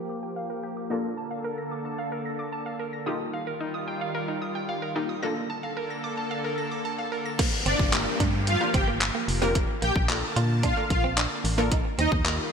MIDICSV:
0, 0, Header, 1, 10, 480
1, 0, Start_track
1, 0, Tempo, 540541
1, 803, Time_signature, 4, 2, 24, 8
1, 11118, End_track
2, 0, Start_track
2, 0, Title_t, "Synth arpeggio sound"
2, 0, Program_c, 0, 84
2, 83, Note_on_c, 0, 86, 83
2, 189, Note_off_c, 0, 86, 0
2, 203, Note_on_c, 0, 79, 72
2, 309, Note_off_c, 0, 79, 0
2, 322, Note_on_c, 0, 77, 85
2, 428, Note_off_c, 0, 77, 0
2, 443, Note_on_c, 0, 70, 68
2, 548, Note_off_c, 0, 70, 0
2, 563, Note_on_c, 0, 67, 78
2, 668, Note_off_c, 0, 67, 0
2, 682, Note_on_c, 0, 86, 77
2, 788, Note_off_c, 0, 86, 0
2, 803, Note_on_c, 0, 94, 98
2, 908, Note_off_c, 0, 94, 0
2, 1042, Note_on_c, 0, 81, 82
2, 1148, Note_off_c, 0, 81, 0
2, 1162, Note_on_c, 0, 77, 73
2, 1268, Note_off_c, 0, 77, 0
2, 1282, Note_on_c, 0, 70, 76
2, 1388, Note_off_c, 0, 70, 0
2, 1402, Note_on_c, 0, 94, 77
2, 1508, Note_off_c, 0, 94, 0
2, 1522, Note_on_c, 0, 86, 84
2, 1628, Note_off_c, 0, 86, 0
2, 1642, Note_on_c, 0, 81, 73
2, 1748, Note_off_c, 0, 81, 0
2, 1762, Note_on_c, 0, 77, 91
2, 1868, Note_off_c, 0, 77, 0
2, 1882, Note_on_c, 0, 70, 68
2, 1988, Note_off_c, 0, 70, 0
2, 2002, Note_on_c, 0, 94, 80
2, 2108, Note_off_c, 0, 94, 0
2, 2122, Note_on_c, 0, 86, 78
2, 2228, Note_off_c, 0, 86, 0
2, 2242, Note_on_c, 0, 81, 85
2, 2348, Note_off_c, 0, 81, 0
2, 2362, Note_on_c, 0, 77, 68
2, 2468, Note_off_c, 0, 77, 0
2, 2482, Note_on_c, 0, 70, 76
2, 2588, Note_off_c, 0, 70, 0
2, 2601, Note_on_c, 0, 94, 79
2, 2708, Note_off_c, 0, 94, 0
2, 2722, Note_on_c, 0, 87, 102
2, 2828, Note_off_c, 0, 87, 0
2, 2962, Note_on_c, 0, 77, 85
2, 3068, Note_off_c, 0, 77, 0
2, 3081, Note_on_c, 0, 70, 73
2, 3188, Note_off_c, 0, 70, 0
2, 3202, Note_on_c, 0, 63, 78
2, 3308, Note_off_c, 0, 63, 0
2, 3322, Note_on_c, 0, 87, 80
2, 3428, Note_off_c, 0, 87, 0
2, 3442, Note_on_c, 0, 79, 84
2, 3548, Note_off_c, 0, 79, 0
2, 3563, Note_on_c, 0, 77, 77
2, 3668, Note_off_c, 0, 77, 0
2, 3682, Note_on_c, 0, 70, 89
2, 3788, Note_off_c, 0, 70, 0
2, 3803, Note_on_c, 0, 63, 69
2, 3908, Note_off_c, 0, 63, 0
2, 3922, Note_on_c, 0, 87, 79
2, 4028, Note_off_c, 0, 87, 0
2, 4042, Note_on_c, 0, 79, 74
2, 4148, Note_off_c, 0, 79, 0
2, 4163, Note_on_c, 0, 77, 86
2, 4268, Note_off_c, 0, 77, 0
2, 4282, Note_on_c, 0, 70, 71
2, 4388, Note_off_c, 0, 70, 0
2, 4402, Note_on_c, 0, 63, 80
2, 4508, Note_off_c, 0, 63, 0
2, 4521, Note_on_c, 0, 87, 80
2, 4627, Note_off_c, 0, 87, 0
2, 4641, Note_on_c, 0, 94, 103
2, 4747, Note_off_c, 0, 94, 0
2, 4882, Note_on_c, 0, 81, 83
2, 4988, Note_off_c, 0, 81, 0
2, 5002, Note_on_c, 0, 77, 71
2, 5108, Note_off_c, 0, 77, 0
2, 5122, Note_on_c, 0, 70, 80
2, 5228, Note_off_c, 0, 70, 0
2, 5242, Note_on_c, 0, 94, 78
2, 5348, Note_off_c, 0, 94, 0
2, 5362, Note_on_c, 0, 86, 87
2, 5468, Note_off_c, 0, 86, 0
2, 5483, Note_on_c, 0, 81, 72
2, 5588, Note_off_c, 0, 81, 0
2, 5602, Note_on_c, 0, 77, 87
2, 5708, Note_off_c, 0, 77, 0
2, 5723, Note_on_c, 0, 70, 72
2, 5828, Note_off_c, 0, 70, 0
2, 5842, Note_on_c, 0, 94, 82
2, 5948, Note_off_c, 0, 94, 0
2, 5963, Note_on_c, 0, 86, 75
2, 6068, Note_off_c, 0, 86, 0
2, 6083, Note_on_c, 0, 81, 89
2, 6188, Note_off_c, 0, 81, 0
2, 6203, Note_on_c, 0, 77, 70
2, 6309, Note_off_c, 0, 77, 0
2, 6322, Note_on_c, 0, 70, 77
2, 6428, Note_off_c, 0, 70, 0
2, 6443, Note_on_c, 0, 94, 79
2, 6548, Note_off_c, 0, 94, 0
2, 11118, End_track
3, 0, Start_track
3, 0, Title_t, "Supersaw synth"
3, 0, Program_c, 1, 81
3, 6804, Note_on_c, 1, 74, 80
3, 6811, Note_on_c, 1, 62, 64
3, 6893, Note_off_c, 1, 74, 0
3, 6897, Note_off_c, 1, 62, 0
3, 7523, Note_on_c, 1, 77, 84
3, 7530, Note_on_c, 1, 65, 68
3, 7702, Note_off_c, 1, 77, 0
3, 7706, Note_off_c, 1, 65, 0
3, 7762, Note_on_c, 1, 79, 83
3, 7770, Note_on_c, 1, 67, 64
3, 7852, Note_off_c, 1, 79, 0
3, 7857, Note_off_c, 1, 67, 0
3, 8724, Note_on_c, 1, 79, 91
3, 8731, Note_on_c, 1, 67, 65
3, 8813, Note_off_c, 1, 79, 0
3, 8817, Note_off_c, 1, 67, 0
3, 9444, Note_on_c, 1, 77, 82
3, 9451, Note_on_c, 1, 65, 65
3, 9622, Note_off_c, 1, 77, 0
3, 9627, Note_off_c, 1, 65, 0
3, 9684, Note_on_c, 1, 77, 76
3, 9691, Note_on_c, 1, 65, 57
3, 9773, Note_off_c, 1, 77, 0
3, 9777, Note_off_c, 1, 65, 0
3, 10643, Note_on_c, 1, 75, 83
3, 10651, Note_on_c, 1, 63, 68
3, 10733, Note_off_c, 1, 75, 0
3, 10738, Note_off_c, 1, 63, 0
3, 11118, End_track
4, 0, Start_track
4, 0, Title_t, "Synth pluck"
4, 0, Program_c, 2, 84
4, 0, Note_on_c, 2, 58, 81
4, 0, Note_on_c, 2, 62, 70
4, 0, Note_on_c, 2, 65, 72
4, 0, Note_on_c, 2, 67, 86
4, 766, Note_off_c, 2, 58, 0
4, 767, Note_off_c, 2, 62, 0
4, 769, Note_off_c, 2, 65, 0
4, 770, Note_off_c, 2, 67, 0
4, 800, Note_on_c, 2, 58, 79
4, 803, Note_on_c, 2, 62, 71
4, 805, Note_on_c, 2, 65, 72
4, 809, Note_on_c, 2, 69, 90
4, 2686, Note_off_c, 2, 58, 0
4, 2687, Note_off_c, 2, 62, 0
4, 2688, Note_off_c, 2, 65, 0
4, 2690, Note_off_c, 2, 69, 0
4, 2718, Note_on_c, 2, 58, 75
4, 2721, Note_on_c, 2, 63, 71
4, 2724, Note_on_c, 2, 65, 72
4, 2727, Note_on_c, 2, 67, 86
4, 4367, Note_off_c, 2, 58, 0
4, 4368, Note_off_c, 2, 63, 0
4, 4370, Note_off_c, 2, 65, 0
4, 4371, Note_off_c, 2, 67, 0
4, 4400, Note_on_c, 2, 58, 60
4, 4401, Note_on_c, 2, 63, 55
4, 4403, Note_on_c, 2, 65, 54
4, 4404, Note_on_c, 2, 67, 64
4, 4628, Note_off_c, 2, 58, 0
4, 4634, Note_off_c, 2, 65, 0
4, 4639, Note_on_c, 2, 58, 76
4, 4641, Note_on_c, 2, 62, 75
4, 4642, Note_off_c, 2, 63, 0
4, 4644, Note_off_c, 2, 67, 0
4, 4644, Note_on_c, 2, 65, 70
4, 4647, Note_on_c, 2, 69, 87
4, 6525, Note_off_c, 2, 58, 0
4, 6526, Note_off_c, 2, 62, 0
4, 6528, Note_off_c, 2, 65, 0
4, 6529, Note_off_c, 2, 69, 0
4, 7040, Note_on_c, 2, 58, 103
4, 7041, Note_on_c, 2, 62, 92
4, 7043, Note_on_c, 2, 65, 87
4, 7044, Note_on_c, 2, 67, 91
4, 7045, Note_on_c, 2, 70, 116
4, 7331, Note_off_c, 2, 58, 0
4, 7332, Note_off_c, 2, 62, 0
4, 7333, Note_off_c, 2, 65, 0
4, 7333, Note_off_c, 2, 67, 0
4, 7334, Note_off_c, 2, 70, 0
4, 7642, Note_on_c, 2, 58, 73
4, 7643, Note_on_c, 2, 62, 67
4, 7644, Note_on_c, 2, 65, 65
4, 7645, Note_on_c, 2, 67, 68
4, 7646, Note_on_c, 2, 70, 81
4, 7990, Note_off_c, 2, 58, 0
4, 7991, Note_off_c, 2, 62, 0
4, 7991, Note_off_c, 2, 65, 0
4, 7992, Note_off_c, 2, 67, 0
4, 7992, Note_off_c, 2, 70, 0
4, 8361, Note_on_c, 2, 58, 106
4, 8362, Note_on_c, 2, 62, 97
4, 8363, Note_on_c, 2, 65, 98
4, 8365, Note_on_c, 2, 67, 97
4, 8365, Note_on_c, 2, 70, 121
4, 8482, Note_off_c, 2, 58, 0
4, 8483, Note_off_c, 2, 62, 0
4, 8483, Note_off_c, 2, 65, 0
4, 8484, Note_off_c, 2, 67, 0
4, 8484, Note_off_c, 2, 70, 0
4, 8963, Note_on_c, 2, 58, 102
4, 8964, Note_on_c, 2, 62, 95
4, 8965, Note_on_c, 2, 65, 97
4, 8966, Note_on_c, 2, 69, 97
4, 8967, Note_on_c, 2, 70, 112
4, 9253, Note_off_c, 2, 58, 0
4, 9253, Note_off_c, 2, 62, 0
4, 9254, Note_off_c, 2, 65, 0
4, 9254, Note_off_c, 2, 69, 0
4, 9255, Note_off_c, 2, 70, 0
4, 9562, Note_on_c, 2, 58, 85
4, 9562, Note_on_c, 2, 62, 76
4, 9563, Note_on_c, 2, 65, 79
4, 9564, Note_on_c, 2, 69, 75
4, 9565, Note_on_c, 2, 70, 90
4, 9910, Note_off_c, 2, 58, 0
4, 9910, Note_off_c, 2, 62, 0
4, 9911, Note_off_c, 2, 65, 0
4, 9911, Note_off_c, 2, 69, 0
4, 9912, Note_off_c, 2, 70, 0
4, 10280, Note_on_c, 2, 58, 104
4, 10281, Note_on_c, 2, 62, 100
4, 10282, Note_on_c, 2, 65, 94
4, 10284, Note_on_c, 2, 69, 102
4, 10284, Note_on_c, 2, 70, 117
4, 10401, Note_off_c, 2, 58, 0
4, 10402, Note_off_c, 2, 62, 0
4, 10402, Note_off_c, 2, 65, 0
4, 10403, Note_off_c, 2, 69, 0
4, 10404, Note_off_c, 2, 70, 0
4, 10880, Note_on_c, 2, 58, 104
4, 10881, Note_on_c, 2, 63, 90
4, 10882, Note_on_c, 2, 65, 88
4, 10883, Note_on_c, 2, 67, 91
4, 10884, Note_on_c, 2, 70, 110
4, 11118, Note_off_c, 2, 58, 0
4, 11118, Note_off_c, 2, 63, 0
4, 11118, Note_off_c, 2, 65, 0
4, 11118, Note_off_c, 2, 67, 0
4, 11118, Note_off_c, 2, 70, 0
4, 11118, End_track
5, 0, Start_track
5, 0, Title_t, "Clean electric guitar"
5, 0, Program_c, 3, 27
5, 6563, Note_on_c, 3, 58, 88
5, 6640, Note_off_c, 3, 58, 0
5, 6803, Note_on_c, 3, 60, 90
5, 6880, Note_off_c, 3, 60, 0
5, 7283, Note_on_c, 3, 62, 77
5, 7361, Note_off_c, 3, 62, 0
5, 7763, Note_on_c, 3, 60, 90
5, 7840, Note_off_c, 3, 60, 0
5, 7882, Note_on_c, 3, 58, 88
5, 7960, Note_off_c, 3, 58, 0
5, 8123, Note_on_c, 3, 58, 86
5, 8201, Note_off_c, 3, 58, 0
5, 8362, Note_on_c, 3, 60, 82
5, 8440, Note_off_c, 3, 60, 0
5, 8483, Note_on_c, 3, 58, 93
5, 8560, Note_off_c, 3, 58, 0
5, 8722, Note_on_c, 3, 58, 80
5, 8799, Note_off_c, 3, 58, 0
5, 9203, Note_on_c, 3, 65, 87
5, 9280, Note_off_c, 3, 65, 0
5, 9443, Note_on_c, 3, 62, 91
5, 9520, Note_off_c, 3, 62, 0
5, 9804, Note_on_c, 3, 60, 85
5, 9881, Note_off_c, 3, 60, 0
5, 9926, Note_on_c, 3, 62, 80
5, 10002, Note_off_c, 3, 62, 0
5, 10284, Note_on_c, 3, 58, 79
5, 10361, Note_off_c, 3, 58, 0
5, 10404, Note_on_c, 3, 63, 89
5, 10481, Note_off_c, 3, 63, 0
5, 10644, Note_on_c, 3, 60, 88
5, 10721, Note_off_c, 3, 60, 0
5, 11118, End_track
6, 0, Start_track
6, 0, Title_t, "Analog synth pad"
6, 0, Program_c, 4, 89
6, 0, Note_on_c, 4, 53, 75
6, 0, Note_on_c, 4, 58, 68
6, 0, Note_on_c, 4, 67, 81
6, 784, Note_off_c, 4, 53, 0
6, 784, Note_off_c, 4, 67, 0
6, 803, Note_on_c, 4, 50, 78
6, 803, Note_on_c, 4, 69, 81
6, 2688, Note_off_c, 4, 58, 0
6, 2704, Note_off_c, 4, 50, 0
6, 2704, Note_off_c, 4, 69, 0
6, 2725, Note_on_c, 4, 55, 66
6, 2725, Note_on_c, 4, 65, 83
6, 2726, Note_on_c, 4, 51, 76
6, 4625, Note_off_c, 4, 51, 0
6, 4625, Note_off_c, 4, 55, 0
6, 4625, Note_off_c, 4, 65, 0
6, 4642, Note_on_c, 4, 50, 76
6, 4642, Note_on_c, 4, 58, 73
6, 4642, Note_on_c, 4, 69, 83
6, 6543, Note_off_c, 4, 50, 0
6, 6543, Note_off_c, 4, 58, 0
6, 6543, Note_off_c, 4, 69, 0
6, 6561, Note_on_c, 4, 58, 77
6, 6562, Note_on_c, 4, 53, 84
6, 6562, Note_on_c, 4, 67, 91
6, 8463, Note_off_c, 4, 53, 0
6, 8463, Note_off_c, 4, 67, 0
6, 8484, Note_on_c, 4, 50, 81
6, 8484, Note_on_c, 4, 81, 89
6, 10367, Note_off_c, 4, 58, 0
6, 10384, Note_off_c, 4, 50, 0
6, 10384, Note_off_c, 4, 81, 0
6, 10402, Note_on_c, 4, 65, 90
6, 10403, Note_on_c, 4, 51, 81
6, 10403, Note_on_c, 4, 55, 74
6, 11118, Note_off_c, 4, 51, 0
6, 11118, Note_off_c, 4, 55, 0
6, 11118, Note_off_c, 4, 65, 0
6, 11118, End_track
7, 0, Start_track
7, 0, Title_t, "FM bass"
7, 0, Program_c, 5, 39
7, 6803, Note_on_c, 5, 31, 94
7, 6884, Note_off_c, 5, 31, 0
7, 6921, Note_on_c, 5, 31, 93
7, 7165, Note_off_c, 5, 31, 0
7, 7283, Note_on_c, 5, 43, 110
7, 7608, Note_off_c, 5, 43, 0
7, 7762, Note_on_c, 5, 31, 96
7, 8087, Note_off_c, 5, 31, 0
7, 8243, Note_on_c, 5, 29, 94
7, 8568, Note_off_c, 5, 29, 0
7, 8723, Note_on_c, 5, 34, 92
7, 8804, Note_off_c, 5, 34, 0
7, 8841, Note_on_c, 5, 34, 93
7, 9085, Note_off_c, 5, 34, 0
7, 9203, Note_on_c, 5, 46, 108
7, 9528, Note_off_c, 5, 46, 0
7, 9682, Note_on_c, 5, 34, 95
7, 10007, Note_off_c, 5, 34, 0
7, 10163, Note_on_c, 5, 33, 91
7, 10488, Note_off_c, 5, 33, 0
7, 10643, Note_on_c, 5, 39, 99
7, 10724, Note_off_c, 5, 39, 0
7, 10762, Note_on_c, 5, 39, 92
7, 11006, Note_off_c, 5, 39, 0
7, 11118, End_track
8, 0, Start_track
8, 0, Title_t, "Downlifter"
8, 0, Program_c, 6, 103
8, 6563, Note_on_c, 6, 60, 87
8, 10403, Note_off_c, 6, 60, 0
8, 11118, End_track
9, 0, Start_track
9, 0, Title_t, "Muted clean electric guitar strokes"
9, 6683, Note_on_c, 9, 29, 49
9, 6771, Note_off_c, 9, 29, 0
9, 7523, Note_on_c, 9, 29, 48
9, 7612, Note_off_c, 9, 29, 0
9, 8242, Note_on_c, 9, 29, 48
9, 8331, Note_off_c, 9, 29, 0
9, 8603, Note_on_c, 9, 29, 49
9, 8692, Note_off_c, 9, 29, 0
9, 9683, Note_on_c, 9, 29, 46
9, 9772, Note_off_c, 9, 29, 0
9, 10165, Note_on_c, 9, 29, 49
9, 10253, Note_off_c, 9, 29, 0
9, 10524, Note_on_c, 9, 29, 50
9, 10612, Note_off_c, 9, 29, 0
9, 11118, End_track
10, 0, Start_track
10, 0, Title_t, "Drums"
10, 6563, Note_on_c, 9, 36, 123
10, 6563, Note_on_c, 9, 42, 108
10, 6563, Note_on_c, 9, 49, 114
10, 6652, Note_off_c, 9, 36, 0
10, 6652, Note_off_c, 9, 42, 0
10, 6652, Note_off_c, 9, 49, 0
10, 6803, Note_on_c, 9, 42, 72
10, 6892, Note_off_c, 9, 42, 0
10, 6921, Note_on_c, 9, 36, 105
10, 7010, Note_off_c, 9, 36, 0
10, 7044, Note_on_c, 9, 39, 110
10, 7044, Note_on_c, 9, 42, 96
10, 7133, Note_off_c, 9, 39, 0
10, 7133, Note_off_c, 9, 42, 0
10, 7283, Note_on_c, 9, 36, 100
10, 7283, Note_on_c, 9, 42, 89
10, 7372, Note_off_c, 9, 36, 0
10, 7372, Note_off_c, 9, 42, 0
10, 7523, Note_on_c, 9, 42, 99
10, 7612, Note_off_c, 9, 42, 0
10, 7762, Note_on_c, 9, 36, 105
10, 7762, Note_on_c, 9, 42, 70
10, 7851, Note_off_c, 9, 36, 0
10, 7851, Note_off_c, 9, 42, 0
10, 8004, Note_on_c, 9, 42, 107
10, 8005, Note_on_c, 9, 39, 117
10, 8093, Note_off_c, 9, 42, 0
10, 8094, Note_off_c, 9, 39, 0
10, 8245, Note_on_c, 9, 46, 86
10, 8334, Note_off_c, 9, 46, 0
10, 8483, Note_on_c, 9, 36, 116
10, 8483, Note_on_c, 9, 42, 107
10, 8572, Note_off_c, 9, 36, 0
10, 8572, Note_off_c, 9, 42, 0
10, 8723, Note_on_c, 9, 42, 73
10, 8811, Note_off_c, 9, 42, 0
10, 8841, Note_on_c, 9, 36, 112
10, 8930, Note_off_c, 9, 36, 0
10, 8964, Note_on_c, 9, 39, 114
10, 8964, Note_on_c, 9, 42, 92
10, 9053, Note_off_c, 9, 39, 0
10, 9053, Note_off_c, 9, 42, 0
10, 9204, Note_on_c, 9, 42, 89
10, 9293, Note_off_c, 9, 42, 0
10, 9443, Note_on_c, 9, 36, 100
10, 9443, Note_on_c, 9, 42, 94
10, 9531, Note_off_c, 9, 42, 0
10, 9532, Note_off_c, 9, 36, 0
10, 9682, Note_on_c, 9, 36, 106
10, 9682, Note_on_c, 9, 42, 67
10, 9771, Note_off_c, 9, 36, 0
10, 9771, Note_off_c, 9, 42, 0
10, 9925, Note_on_c, 9, 39, 119
10, 9925, Note_on_c, 9, 42, 104
10, 10013, Note_off_c, 9, 42, 0
10, 10014, Note_off_c, 9, 39, 0
10, 10165, Note_on_c, 9, 46, 85
10, 10254, Note_off_c, 9, 46, 0
10, 10403, Note_on_c, 9, 36, 117
10, 10404, Note_on_c, 9, 42, 109
10, 10492, Note_off_c, 9, 36, 0
10, 10492, Note_off_c, 9, 42, 0
10, 10644, Note_on_c, 9, 42, 77
10, 10733, Note_off_c, 9, 42, 0
10, 10761, Note_on_c, 9, 36, 111
10, 10850, Note_off_c, 9, 36, 0
10, 10885, Note_on_c, 9, 39, 117
10, 10885, Note_on_c, 9, 42, 92
10, 10973, Note_off_c, 9, 39, 0
10, 10974, Note_off_c, 9, 42, 0
10, 11118, End_track
0, 0, End_of_file